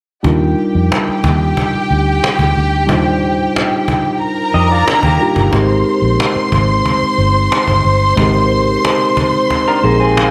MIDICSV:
0, 0, Header, 1, 7, 480
1, 0, Start_track
1, 0, Key_signature, -3, "major"
1, 0, Tempo, 661521
1, 178, Time_signature, 4, 2, 24, 8
1, 7478, End_track
2, 0, Start_track
2, 0, Title_t, "String section"
2, 0, Program_c, 0, 48
2, 181, Note_on_c, 0, 79, 86
2, 183, Note_on_c, 0, 67, 78
2, 3025, Note_off_c, 0, 79, 0
2, 3026, Note_off_c, 0, 67, 0
2, 3047, Note_on_c, 0, 82, 90
2, 3049, Note_on_c, 0, 70, 77
2, 3990, Note_off_c, 0, 82, 0
2, 3991, Note_off_c, 0, 70, 0
2, 4009, Note_on_c, 0, 72, 78
2, 4010, Note_on_c, 0, 84, 92
2, 7478, Note_off_c, 0, 72, 0
2, 7478, Note_off_c, 0, 84, 0
2, 7478, End_track
3, 0, Start_track
3, 0, Title_t, "Clean electric guitar"
3, 0, Program_c, 1, 27
3, 3295, Note_on_c, 1, 75, 65
3, 3301, Note_on_c, 1, 67, 47
3, 3408, Note_off_c, 1, 75, 0
3, 3411, Note_off_c, 1, 67, 0
3, 3419, Note_on_c, 1, 74, 54
3, 3426, Note_on_c, 1, 65, 43
3, 3530, Note_off_c, 1, 74, 0
3, 3533, Note_off_c, 1, 65, 0
3, 3538, Note_on_c, 1, 70, 62
3, 3543, Note_on_c, 1, 62, 60
3, 3649, Note_off_c, 1, 70, 0
3, 3652, Note_off_c, 1, 62, 0
3, 3657, Note_on_c, 1, 67, 59
3, 3661, Note_on_c, 1, 58, 49
3, 3996, Note_off_c, 1, 67, 0
3, 3999, Note_off_c, 1, 58, 0
3, 7022, Note_on_c, 1, 70, 57
3, 7026, Note_on_c, 1, 62, 50
3, 7133, Note_off_c, 1, 70, 0
3, 7135, Note_off_c, 1, 62, 0
3, 7136, Note_on_c, 1, 72, 60
3, 7142, Note_on_c, 1, 63, 56
3, 7250, Note_off_c, 1, 72, 0
3, 7253, Note_off_c, 1, 63, 0
3, 7256, Note_on_c, 1, 68, 53
3, 7262, Note_on_c, 1, 60, 47
3, 7478, Note_off_c, 1, 60, 0
3, 7478, Note_off_c, 1, 68, 0
3, 7478, End_track
4, 0, Start_track
4, 0, Title_t, "Tine electric piano"
4, 0, Program_c, 2, 4
4, 167, Note_on_c, 2, 55, 72
4, 172, Note_on_c, 2, 62, 63
4, 183, Note_on_c, 2, 63, 64
4, 189, Note_on_c, 2, 65, 61
4, 197, Note_on_c, 2, 70, 69
4, 303, Control_c, 2, 64, 127
4, 2060, Note_off_c, 2, 55, 0
4, 2062, Note_off_c, 2, 62, 0
4, 2067, Note_off_c, 2, 63, 0
4, 2070, Note_off_c, 2, 65, 0
4, 2074, Note_off_c, 2, 70, 0
4, 2079, Note_on_c, 2, 55, 66
4, 2083, Note_on_c, 2, 62, 70
4, 2093, Note_on_c, 2, 63, 69
4, 2104, Note_on_c, 2, 65, 59
4, 2108, Note_on_c, 2, 72, 79
4, 3735, Note_off_c, 2, 55, 0
4, 3738, Note_off_c, 2, 62, 0
4, 3742, Note_off_c, 2, 63, 0
4, 3748, Note_off_c, 2, 65, 0
4, 3750, Note_off_c, 2, 72, 0
4, 3767, Note_on_c, 2, 55, 48
4, 3771, Note_on_c, 2, 62, 45
4, 3773, Note_on_c, 2, 63, 46
4, 3779, Note_on_c, 2, 65, 48
4, 3781, Note_on_c, 2, 67, 54
4, 4001, Note_on_c, 2, 56, 75
4, 4008, Note_off_c, 2, 63, 0
4, 4008, Note_on_c, 2, 60, 64
4, 4009, Note_off_c, 2, 55, 0
4, 4011, Note_off_c, 2, 62, 0
4, 4015, Note_off_c, 2, 65, 0
4, 4016, Note_off_c, 2, 67, 0
4, 4017, Note_on_c, 2, 63, 57
4, 4021, Control_c, 2, 64, 0
4, 4024, Note_on_c, 2, 67, 57
4, 4032, Note_on_c, 2, 70, 83
4, 4153, Control_c, 2, 64, 127
4, 5898, Note_off_c, 2, 56, 0
4, 5902, Note_off_c, 2, 60, 0
4, 5906, Note_off_c, 2, 63, 0
4, 5910, Note_off_c, 2, 67, 0
4, 5914, Note_off_c, 2, 70, 0
4, 5923, Note_on_c, 2, 56, 75
4, 5931, Note_on_c, 2, 60, 60
4, 5939, Note_on_c, 2, 63, 64
4, 5948, Note_on_c, 2, 67, 64
4, 5955, Note_on_c, 2, 70, 84
4, 7106, Note_off_c, 2, 56, 0
4, 7110, Note_off_c, 2, 60, 0
4, 7114, Note_off_c, 2, 63, 0
4, 7119, Note_off_c, 2, 67, 0
4, 7122, Note_off_c, 2, 70, 0
4, 7127, Note_on_c, 2, 56, 51
4, 7133, Note_on_c, 2, 63, 48
4, 7134, Note_on_c, 2, 60, 47
4, 7141, Note_on_c, 2, 68, 50
4, 7143, Note_on_c, 2, 70, 51
4, 7378, Note_on_c, 2, 77, 66
4, 7478, Note_off_c, 2, 56, 0
4, 7478, Note_off_c, 2, 60, 0
4, 7478, Note_off_c, 2, 63, 0
4, 7478, Note_off_c, 2, 68, 0
4, 7478, Note_off_c, 2, 70, 0
4, 7478, Note_off_c, 2, 77, 0
4, 7478, End_track
5, 0, Start_track
5, 0, Title_t, "Fingered electric bass"
5, 0, Program_c, 3, 33
5, 180, Note_on_c, 3, 39, 90
5, 388, Note_off_c, 3, 39, 0
5, 544, Note_on_c, 3, 41, 90
5, 645, Note_off_c, 3, 41, 0
5, 901, Note_on_c, 3, 39, 69
5, 1108, Note_off_c, 3, 39, 0
5, 1382, Note_on_c, 3, 38, 80
5, 1588, Note_off_c, 3, 38, 0
5, 1734, Note_on_c, 3, 38, 65
5, 1839, Note_off_c, 3, 38, 0
5, 1865, Note_on_c, 3, 38, 65
5, 2098, Note_off_c, 3, 38, 0
5, 2098, Note_on_c, 3, 39, 96
5, 2515, Note_off_c, 3, 39, 0
5, 3295, Note_on_c, 3, 41, 72
5, 3503, Note_off_c, 3, 41, 0
5, 3651, Note_on_c, 3, 39, 74
5, 3756, Note_off_c, 3, 39, 0
5, 3891, Note_on_c, 3, 31, 91
5, 3996, Note_off_c, 3, 31, 0
5, 4013, Note_on_c, 3, 32, 89
5, 4222, Note_off_c, 3, 32, 0
5, 4367, Note_on_c, 3, 34, 72
5, 4474, Note_off_c, 3, 34, 0
5, 4732, Note_on_c, 3, 32, 71
5, 4942, Note_off_c, 3, 32, 0
5, 5211, Note_on_c, 3, 31, 88
5, 5421, Note_off_c, 3, 31, 0
5, 5570, Note_on_c, 3, 31, 66
5, 5676, Note_off_c, 3, 31, 0
5, 5695, Note_on_c, 3, 31, 69
5, 5903, Note_off_c, 3, 31, 0
5, 5932, Note_on_c, 3, 32, 89
5, 6352, Note_off_c, 3, 32, 0
5, 7138, Note_on_c, 3, 34, 74
5, 7478, Note_off_c, 3, 34, 0
5, 7478, End_track
6, 0, Start_track
6, 0, Title_t, "Cajon"
6, 178, Note_on_c, 9, 36, 82
6, 250, Note_off_c, 9, 36, 0
6, 425, Note_on_c, 9, 38, 36
6, 497, Note_off_c, 9, 38, 0
6, 666, Note_on_c, 9, 38, 90
6, 739, Note_off_c, 9, 38, 0
6, 899, Note_on_c, 9, 36, 92
6, 971, Note_off_c, 9, 36, 0
6, 1027, Note_on_c, 9, 38, 27
6, 1100, Note_off_c, 9, 38, 0
6, 1140, Note_on_c, 9, 36, 76
6, 1143, Note_on_c, 9, 38, 48
6, 1213, Note_off_c, 9, 36, 0
6, 1216, Note_off_c, 9, 38, 0
6, 1371, Note_on_c, 9, 38, 38
6, 1444, Note_off_c, 9, 38, 0
6, 1624, Note_on_c, 9, 38, 104
6, 1696, Note_off_c, 9, 38, 0
6, 1734, Note_on_c, 9, 36, 69
6, 1807, Note_off_c, 9, 36, 0
6, 1856, Note_on_c, 9, 38, 36
6, 1929, Note_off_c, 9, 38, 0
6, 2095, Note_on_c, 9, 36, 95
6, 2168, Note_off_c, 9, 36, 0
6, 2341, Note_on_c, 9, 38, 37
6, 2413, Note_off_c, 9, 38, 0
6, 2586, Note_on_c, 9, 38, 92
6, 2658, Note_off_c, 9, 38, 0
6, 2815, Note_on_c, 9, 36, 78
6, 2888, Note_off_c, 9, 36, 0
6, 2941, Note_on_c, 9, 38, 32
6, 3014, Note_off_c, 9, 38, 0
6, 3058, Note_on_c, 9, 38, 43
6, 3130, Note_off_c, 9, 38, 0
6, 3289, Note_on_c, 9, 38, 39
6, 3362, Note_off_c, 9, 38, 0
6, 3538, Note_on_c, 9, 38, 101
6, 3611, Note_off_c, 9, 38, 0
6, 3648, Note_on_c, 9, 36, 67
6, 3721, Note_off_c, 9, 36, 0
6, 3769, Note_on_c, 9, 38, 38
6, 3841, Note_off_c, 9, 38, 0
6, 3889, Note_on_c, 9, 36, 75
6, 3962, Note_off_c, 9, 36, 0
6, 4010, Note_on_c, 9, 36, 104
6, 4083, Note_off_c, 9, 36, 0
6, 4252, Note_on_c, 9, 38, 33
6, 4325, Note_off_c, 9, 38, 0
6, 4498, Note_on_c, 9, 38, 105
6, 4571, Note_off_c, 9, 38, 0
6, 4732, Note_on_c, 9, 36, 78
6, 4804, Note_off_c, 9, 36, 0
6, 4860, Note_on_c, 9, 38, 27
6, 4932, Note_off_c, 9, 38, 0
6, 4975, Note_on_c, 9, 36, 73
6, 4977, Note_on_c, 9, 38, 42
6, 5047, Note_off_c, 9, 36, 0
6, 5049, Note_off_c, 9, 38, 0
6, 5209, Note_on_c, 9, 38, 40
6, 5281, Note_off_c, 9, 38, 0
6, 5457, Note_on_c, 9, 38, 100
6, 5529, Note_off_c, 9, 38, 0
6, 5568, Note_on_c, 9, 36, 73
6, 5641, Note_off_c, 9, 36, 0
6, 5690, Note_on_c, 9, 38, 36
6, 5762, Note_off_c, 9, 38, 0
6, 5931, Note_on_c, 9, 36, 105
6, 6003, Note_off_c, 9, 36, 0
6, 6173, Note_on_c, 9, 38, 36
6, 6246, Note_off_c, 9, 38, 0
6, 6419, Note_on_c, 9, 38, 101
6, 6492, Note_off_c, 9, 38, 0
6, 6654, Note_on_c, 9, 36, 86
6, 6726, Note_off_c, 9, 36, 0
6, 6780, Note_on_c, 9, 38, 29
6, 6852, Note_off_c, 9, 38, 0
6, 6896, Note_on_c, 9, 36, 81
6, 6897, Note_on_c, 9, 38, 48
6, 6969, Note_off_c, 9, 36, 0
6, 6969, Note_off_c, 9, 38, 0
6, 7130, Note_on_c, 9, 38, 37
6, 7203, Note_off_c, 9, 38, 0
6, 7382, Note_on_c, 9, 38, 100
6, 7455, Note_off_c, 9, 38, 0
6, 7478, End_track
7, 0, Start_track
7, 0, Title_t, "Muted fingered electric bass strokes"
7, 787, Note_on_c, 9, 29, 37
7, 860, Note_off_c, 9, 29, 0
7, 1265, Note_on_c, 9, 29, 37
7, 1338, Note_off_c, 9, 29, 0
7, 3535, Note_on_c, 9, 29, 40
7, 3607, Note_off_c, 9, 29, 0
7, 4613, Note_on_c, 9, 29, 38
7, 4686, Note_off_c, 9, 29, 0
7, 5097, Note_on_c, 9, 29, 39
7, 5169, Note_off_c, 9, 29, 0
7, 7478, End_track
0, 0, End_of_file